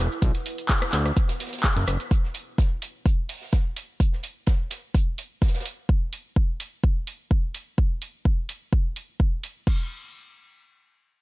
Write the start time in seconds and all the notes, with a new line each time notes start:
Already playing: E4 B4 F#5
0.12 shaker
0.22 B1 B3, kick, closed hi-hat, shaker
0.35 snare, closed hi-hat
0.46 closed hi-hat, open hi-hat, shaker
0.58 F#4, closed hi-hat, shaker
0.69 kick, snare, clap, closed hi-hat, shaker
0.82 cross-stick, closed hi-hat
0.93 D2, snare, clap, closed hi-hat, open hi-hat, shaker
1.06 cross-stick, closed hi-hat, shaker
1.17 kick, closed hi-hat, shaker
1.29 snare, closed hi-hat
1.40 snare, closed hi-hat, open hi-hat, shaker
1.46 snare, closed hi-hat
1.53 snare, closed hi-hat, shaker
1.58 snare, closed hi-hat
1.64 kick, snare, clap, closed hi-hat, shaker
1.76 F#1, closed hi-hat
1.87 F#1, cross-stick, closed hi-hat, open hi-hat, shaker
2.00 closed hi-hat, shaker
2.11 kick, closed hi-hat
2.23 snare
2.34 closed hi-hat, open hi-hat
2.58 kick, snare, closed hi-hat
2.82 closed hi-hat, open hi-hat
3.06 kick, closed hi-hat
3.29 open hi-hat
3.41 snare
3.53 kick, snare, closed hi-hat
3.76 closed hi-hat, open hi-hat
4.00 kick, closed hi-hat
4.12 snare
4.23 closed hi-hat, open hi-hat
4.47 kick, snare, closed hi-hat
4.71 snare, closed hi-hat, open hi-hat
4.95 kick, closed hi-hat
5.18 closed hi-hat, open hi-hat
5.42 kick, snare, closed hi-hat
5.47 snare, closed hi-hat
5.54 snare, closed hi-hat
5.60 snare, closed hi-hat
5.65 closed hi-hat, open hi-hat
5.89 kick
6.13 open hi-hat
6.36 kick
6.60 open hi-hat
6.84 kick
7.07 open hi-hat
7.31 kick
7.54 open hi-hat
7.78 kick
8.02 open hi-hat
8.25 kick
8.49 open hi-hat
8.73 kick
8.96 open hi-hat
9.20 kick
9.44 open hi-hat
9.67 kick, crash